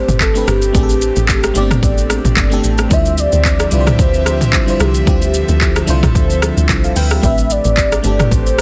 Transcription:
Already playing: A3 C4 D4 G4 B4 C5
0.08 G1, mid tom, shaker
0.20 A4, kick, clap, shaker
0.34 A3 C4 D4 G4 B4, shaker
0.48 G1 G4, cross-stick, shaker
0.62 shaker
0.73 A1 A3 C4 D4 G4 G#4, kick, shaker
0.83 A4
0.89 shaker
1.02 shaker
1.16 A1, shaker
1.29 kick, clap, shaker
1.43 cross-stick, shaker
1.54 G1 A3 B3 D4 G4 D5, shaker
1.61 C4
1.71 cross-stick, mid tom, shaker
1.83 A1, kick, shaker
1.98 shaker
2.10 cross-stick, shaker
2.25 A1, mid tom, shaker
2.37 G1, kick, clap, shaker
2.50 A3 C4 D4 G4 A4, shaker
2.64 A1, shaker
2.78 cross-stick, shaker
2.89 D2 D3 F3 G3 D4 E4 F4 G4 C5 E5, kick, shaker
3.06 shaker
3.18 D5, shaker
3.32 D2, shaker
3.45 kick, clap, shaker
3.60 cross-stick, shaker
3.70 C2 G3 D4 E4 F4 B4, shaker
3.80 C5
3.87 cross-stick, mid tom, shaker
3.99 D2 C5, kick, shaker
4.14 shaker
4.26 cross-stick, shaker
4.41 C2, mid tom, shaker
4.53 kick, clap, shaker
4.66 G3 D4 E4 F4 C5, shaker
4.80 C2 G4, cross-stick, shaker
4.94 shaker
5.05 D2 G3 D4 E4 F4 G4 A4, kick, shaker
5.22 shaker
5.34 shaker
5.48 D2, shaker
5.61 kick, clap, shaker
5.76 cross-stick, shaker
5.86 C2 G3 D4 E4 F4 C5, shaker
6.03 kick, cross-stick, mid tom, shaker
6.15 D2, kick, shaker
6.30 shaker
6.42 cross-stick, shaker
6.57 D2, shaker
6.69 C2, kick, clap, shaker
6.84 A4 F5, shaker
6.96 D2 B4 G5, open hi-hat, shaker
7.10 G4 E5, cross-stick, shaker
7.21 A1 A3 C4 D4 G4 B4 E5, kick, shaker
7.38 shaker
7.50 D5, shaker
7.65 A1, shaker
7.77 kick, clap, shaker
7.92 cross-stick, shaker
8.03 G1 A3 C4 D4 G4 A4, shaker
8.19 cross-stick, mid tom, shaker
8.31 A1 C5, kick, shaker
8.46 shaker
8.59 cross-stick

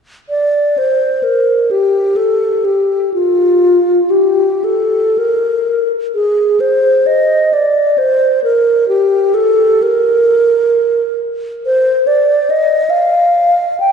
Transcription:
0.29 D5
0.78 C5
1.23 A#4
1.71 G4
2.16 A4
2.65 G4
3.14 F4
4.10 G4
4.64 A4
5.18 A#4
6.15 G#4
6.60 C5
7.07 D#5
7.53 D5
7.98 C5
8.44 A#4
8.88 G4
9.34 A4
9.82 A#4
11.66 C5
12.07 D5
12.50 D#5
12.90 F5
13.80 G5

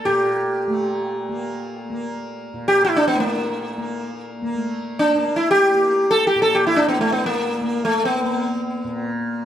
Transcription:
Already playing: A3 A#3
0.05 A#2 G4
0.67 A3
1.29 A#3
1.90 A#3
2.53 A#2
2.68 G4
2.85 E4
2.96 D4
3.08 B3
3.15 A3
3.20 A#3
3.78 A#3
4.42 A#3
4.54 A3
4.99 D4
5.15 A#3
5.36 E4
5.51 G4
5.74 A#3
6.11 A4
6.27 G4
6.35 A#2
6.42 A4
6.55 G4
6.67 E4
6.76 D4
6.88 B3
6.98 A3
7.12 B3
7.26 A#3
7.61 A#3
7.85 A3
8.05 B3
8.23 A#3
8.84 A#2

